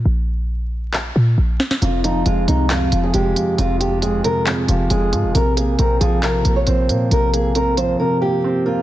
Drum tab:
HH |----------------|x-x-x-x-x-x-x-x-|x-x-x-x-x-x-x-x-|x-x-x-x-x-x-x-x-|
CP |--------x-------|--------x-------|--------x-------|--------x-------|
SD |--------------oo|----------------|----------------|----------------|

HH |x-x-x-x---------|
CP |----------------|
SD |----------------|